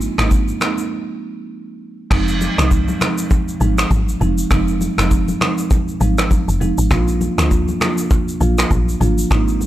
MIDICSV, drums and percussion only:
0, 0, Header, 1, 2, 480
1, 0, Start_track
1, 0, Tempo, 600000
1, 1688, Time_signature, 4, 2, 24, 8
1, 7733, End_track
2, 0, Start_track
2, 0, Title_t, "Drums"
2, 9, Note_on_c, 9, 82, 59
2, 89, Note_off_c, 9, 82, 0
2, 146, Note_on_c, 9, 37, 90
2, 148, Note_on_c, 9, 82, 44
2, 153, Note_on_c, 9, 26, 76
2, 226, Note_off_c, 9, 37, 0
2, 228, Note_off_c, 9, 82, 0
2, 233, Note_off_c, 9, 26, 0
2, 249, Note_on_c, 9, 36, 84
2, 249, Note_on_c, 9, 82, 81
2, 329, Note_off_c, 9, 36, 0
2, 329, Note_off_c, 9, 82, 0
2, 385, Note_on_c, 9, 82, 52
2, 465, Note_off_c, 9, 82, 0
2, 489, Note_on_c, 9, 37, 95
2, 489, Note_on_c, 9, 82, 56
2, 496, Note_on_c, 9, 26, 77
2, 569, Note_off_c, 9, 37, 0
2, 569, Note_off_c, 9, 82, 0
2, 576, Note_off_c, 9, 26, 0
2, 623, Note_on_c, 9, 82, 56
2, 703, Note_off_c, 9, 82, 0
2, 1686, Note_on_c, 9, 37, 93
2, 1687, Note_on_c, 9, 36, 112
2, 1687, Note_on_c, 9, 49, 93
2, 1689, Note_on_c, 9, 64, 77
2, 1693, Note_on_c, 9, 26, 75
2, 1766, Note_off_c, 9, 37, 0
2, 1767, Note_off_c, 9, 36, 0
2, 1767, Note_off_c, 9, 49, 0
2, 1769, Note_off_c, 9, 64, 0
2, 1773, Note_off_c, 9, 26, 0
2, 1823, Note_on_c, 9, 82, 50
2, 1903, Note_off_c, 9, 82, 0
2, 1926, Note_on_c, 9, 63, 81
2, 1929, Note_on_c, 9, 82, 59
2, 2006, Note_off_c, 9, 63, 0
2, 2009, Note_off_c, 9, 82, 0
2, 2067, Note_on_c, 9, 37, 95
2, 2069, Note_on_c, 9, 82, 73
2, 2074, Note_on_c, 9, 26, 73
2, 2147, Note_off_c, 9, 37, 0
2, 2149, Note_off_c, 9, 82, 0
2, 2154, Note_off_c, 9, 26, 0
2, 2169, Note_on_c, 9, 82, 82
2, 2170, Note_on_c, 9, 36, 86
2, 2249, Note_off_c, 9, 82, 0
2, 2250, Note_off_c, 9, 36, 0
2, 2305, Note_on_c, 9, 82, 54
2, 2306, Note_on_c, 9, 63, 85
2, 2385, Note_off_c, 9, 82, 0
2, 2386, Note_off_c, 9, 63, 0
2, 2409, Note_on_c, 9, 63, 67
2, 2409, Note_on_c, 9, 64, 67
2, 2409, Note_on_c, 9, 82, 55
2, 2410, Note_on_c, 9, 37, 92
2, 2416, Note_on_c, 9, 26, 79
2, 2489, Note_off_c, 9, 63, 0
2, 2489, Note_off_c, 9, 64, 0
2, 2489, Note_off_c, 9, 82, 0
2, 2490, Note_off_c, 9, 37, 0
2, 2496, Note_off_c, 9, 26, 0
2, 2543, Note_on_c, 9, 82, 93
2, 2549, Note_on_c, 9, 63, 53
2, 2623, Note_off_c, 9, 82, 0
2, 2629, Note_off_c, 9, 63, 0
2, 2645, Note_on_c, 9, 82, 91
2, 2646, Note_on_c, 9, 36, 124
2, 2725, Note_off_c, 9, 82, 0
2, 2726, Note_off_c, 9, 36, 0
2, 2786, Note_on_c, 9, 82, 51
2, 2866, Note_off_c, 9, 82, 0
2, 2886, Note_on_c, 9, 82, 51
2, 2888, Note_on_c, 9, 63, 92
2, 2966, Note_off_c, 9, 82, 0
2, 2968, Note_off_c, 9, 63, 0
2, 3024, Note_on_c, 9, 82, 77
2, 3027, Note_on_c, 9, 37, 91
2, 3034, Note_on_c, 9, 26, 77
2, 3104, Note_off_c, 9, 82, 0
2, 3107, Note_off_c, 9, 37, 0
2, 3114, Note_off_c, 9, 26, 0
2, 3126, Note_on_c, 9, 36, 98
2, 3128, Note_on_c, 9, 82, 75
2, 3129, Note_on_c, 9, 63, 74
2, 3206, Note_off_c, 9, 36, 0
2, 3208, Note_off_c, 9, 82, 0
2, 3209, Note_off_c, 9, 63, 0
2, 3268, Note_on_c, 9, 82, 55
2, 3348, Note_off_c, 9, 82, 0
2, 3368, Note_on_c, 9, 63, 83
2, 3368, Note_on_c, 9, 64, 86
2, 3371, Note_on_c, 9, 82, 46
2, 3448, Note_off_c, 9, 63, 0
2, 3448, Note_off_c, 9, 64, 0
2, 3451, Note_off_c, 9, 82, 0
2, 3503, Note_on_c, 9, 82, 81
2, 3583, Note_off_c, 9, 82, 0
2, 3606, Note_on_c, 9, 36, 103
2, 3606, Note_on_c, 9, 37, 91
2, 3606, Note_on_c, 9, 82, 72
2, 3610, Note_on_c, 9, 64, 78
2, 3612, Note_on_c, 9, 26, 73
2, 3686, Note_off_c, 9, 36, 0
2, 3686, Note_off_c, 9, 37, 0
2, 3686, Note_off_c, 9, 82, 0
2, 3690, Note_off_c, 9, 64, 0
2, 3692, Note_off_c, 9, 26, 0
2, 3743, Note_on_c, 9, 82, 48
2, 3823, Note_off_c, 9, 82, 0
2, 3846, Note_on_c, 9, 63, 85
2, 3849, Note_on_c, 9, 82, 61
2, 3926, Note_off_c, 9, 63, 0
2, 3929, Note_off_c, 9, 82, 0
2, 3986, Note_on_c, 9, 37, 93
2, 3988, Note_on_c, 9, 82, 72
2, 3993, Note_on_c, 9, 26, 74
2, 4066, Note_off_c, 9, 37, 0
2, 4068, Note_off_c, 9, 82, 0
2, 4073, Note_off_c, 9, 26, 0
2, 4088, Note_on_c, 9, 82, 81
2, 4089, Note_on_c, 9, 36, 84
2, 4168, Note_off_c, 9, 82, 0
2, 4169, Note_off_c, 9, 36, 0
2, 4225, Note_on_c, 9, 82, 56
2, 4226, Note_on_c, 9, 63, 86
2, 4305, Note_off_c, 9, 82, 0
2, 4306, Note_off_c, 9, 63, 0
2, 4329, Note_on_c, 9, 82, 56
2, 4330, Note_on_c, 9, 37, 99
2, 4330, Note_on_c, 9, 63, 66
2, 4330, Note_on_c, 9, 64, 65
2, 4336, Note_on_c, 9, 26, 79
2, 4409, Note_off_c, 9, 82, 0
2, 4410, Note_off_c, 9, 37, 0
2, 4410, Note_off_c, 9, 63, 0
2, 4410, Note_off_c, 9, 64, 0
2, 4416, Note_off_c, 9, 26, 0
2, 4463, Note_on_c, 9, 82, 94
2, 4470, Note_on_c, 9, 63, 51
2, 4543, Note_off_c, 9, 82, 0
2, 4550, Note_off_c, 9, 63, 0
2, 4565, Note_on_c, 9, 82, 90
2, 4566, Note_on_c, 9, 36, 122
2, 4645, Note_off_c, 9, 82, 0
2, 4646, Note_off_c, 9, 36, 0
2, 4706, Note_on_c, 9, 82, 52
2, 4786, Note_off_c, 9, 82, 0
2, 4806, Note_on_c, 9, 82, 53
2, 4807, Note_on_c, 9, 63, 89
2, 4886, Note_off_c, 9, 82, 0
2, 4887, Note_off_c, 9, 63, 0
2, 4944, Note_on_c, 9, 82, 73
2, 4948, Note_on_c, 9, 37, 96
2, 4954, Note_on_c, 9, 26, 73
2, 5024, Note_off_c, 9, 82, 0
2, 5028, Note_off_c, 9, 37, 0
2, 5034, Note_off_c, 9, 26, 0
2, 5047, Note_on_c, 9, 36, 97
2, 5048, Note_on_c, 9, 63, 73
2, 5048, Note_on_c, 9, 82, 74
2, 5127, Note_off_c, 9, 36, 0
2, 5128, Note_off_c, 9, 63, 0
2, 5128, Note_off_c, 9, 82, 0
2, 5189, Note_on_c, 9, 82, 55
2, 5269, Note_off_c, 9, 82, 0
2, 5288, Note_on_c, 9, 63, 86
2, 5288, Note_on_c, 9, 64, 90
2, 5292, Note_on_c, 9, 82, 46
2, 5368, Note_off_c, 9, 63, 0
2, 5368, Note_off_c, 9, 64, 0
2, 5372, Note_off_c, 9, 82, 0
2, 5423, Note_on_c, 9, 82, 79
2, 5503, Note_off_c, 9, 82, 0
2, 5526, Note_on_c, 9, 36, 109
2, 5526, Note_on_c, 9, 37, 91
2, 5526, Note_on_c, 9, 82, 74
2, 5530, Note_on_c, 9, 64, 77
2, 5533, Note_on_c, 9, 26, 74
2, 5606, Note_off_c, 9, 36, 0
2, 5606, Note_off_c, 9, 37, 0
2, 5606, Note_off_c, 9, 82, 0
2, 5610, Note_off_c, 9, 64, 0
2, 5613, Note_off_c, 9, 26, 0
2, 5662, Note_on_c, 9, 82, 51
2, 5742, Note_off_c, 9, 82, 0
2, 5767, Note_on_c, 9, 63, 89
2, 5769, Note_on_c, 9, 82, 60
2, 5847, Note_off_c, 9, 63, 0
2, 5849, Note_off_c, 9, 82, 0
2, 5907, Note_on_c, 9, 37, 97
2, 5908, Note_on_c, 9, 82, 75
2, 5913, Note_on_c, 9, 26, 74
2, 5987, Note_off_c, 9, 37, 0
2, 5988, Note_off_c, 9, 82, 0
2, 5993, Note_off_c, 9, 26, 0
2, 6009, Note_on_c, 9, 36, 87
2, 6009, Note_on_c, 9, 82, 82
2, 6089, Note_off_c, 9, 36, 0
2, 6089, Note_off_c, 9, 82, 0
2, 6145, Note_on_c, 9, 82, 57
2, 6146, Note_on_c, 9, 63, 86
2, 6225, Note_off_c, 9, 82, 0
2, 6226, Note_off_c, 9, 63, 0
2, 6249, Note_on_c, 9, 82, 56
2, 6250, Note_on_c, 9, 37, 96
2, 6250, Note_on_c, 9, 63, 68
2, 6250, Note_on_c, 9, 64, 66
2, 6256, Note_on_c, 9, 26, 77
2, 6329, Note_off_c, 9, 82, 0
2, 6330, Note_off_c, 9, 37, 0
2, 6330, Note_off_c, 9, 63, 0
2, 6330, Note_off_c, 9, 64, 0
2, 6336, Note_off_c, 9, 26, 0
2, 6382, Note_on_c, 9, 82, 96
2, 6389, Note_on_c, 9, 63, 54
2, 6462, Note_off_c, 9, 82, 0
2, 6469, Note_off_c, 9, 63, 0
2, 6485, Note_on_c, 9, 82, 88
2, 6486, Note_on_c, 9, 36, 127
2, 6565, Note_off_c, 9, 82, 0
2, 6566, Note_off_c, 9, 36, 0
2, 6626, Note_on_c, 9, 82, 51
2, 6706, Note_off_c, 9, 82, 0
2, 6726, Note_on_c, 9, 82, 54
2, 6728, Note_on_c, 9, 63, 87
2, 6806, Note_off_c, 9, 82, 0
2, 6808, Note_off_c, 9, 63, 0
2, 6864, Note_on_c, 9, 82, 78
2, 6868, Note_on_c, 9, 37, 98
2, 6874, Note_on_c, 9, 26, 79
2, 6944, Note_off_c, 9, 82, 0
2, 6948, Note_off_c, 9, 37, 0
2, 6954, Note_off_c, 9, 26, 0
2, 6967, Note_on_c, 9, 36, 96
2, 6968, Note_on_c, 9, 63, 76
2, 6968, Note_on_c, 9, 82, 76
2, 7047, Note_off_c, 9, 36, 0
2, 7048, Note_off_c, 9, 63, 0
2, 7048, Note_off_c, 9, 82, 0
2, 7109, Note_on_c, 9, 82, 58
2, 7189, Note_off_c, 9, 82, 0
2, 7207, Note_on_c, 9, 63, 89
2, 7207, Note_on_c, 9, 64, 88
2, 7212, Note_on_c, 9, 82, 46
2, 7287, Note_off_c, 9, 63, 0
2, 7287, Note_off_c, 9, 64, 0
2, 7292, Note_off_c, 9, 82, 0
2, 7344, Note_on_c, 9, 82, 81
2, 7424, Note_off_c, 9, 82, 0
2, 7447, Note_on_c, 9, 36, 115
2, 7447, Note_on_c, 9, 37, 93
2, 7448, Note_on_c, 9, 82, 74
2, 7449, Note_on_c, 9, 64, 80
2, 7454, Note_on_c, 9, 26, 73
2, 7527, Note_off_c, 9, 36, 0
2, 7527, Note_off_c, 9, 37, 0
2, 7528, Note_off_c, 9, 82, 0
2, 7529, Note_off_c, 9, 64, 0
2, 7534, Note_off_c, 9, 26, 0
2, 7584, Note_on_c, 9, 82, 50
2, 7664, Note_off_c, 9, 82, 0
2, 7686, Note_on_c, 9, 63, 82
2, 7690, Note_on_c, 9, 82, 59
2, 7733, Note_off_c, 9, 63, 0
2, 7733, Note_off_c, 9, 82, 0
2, 7733, End_track
0, 0, End_of_file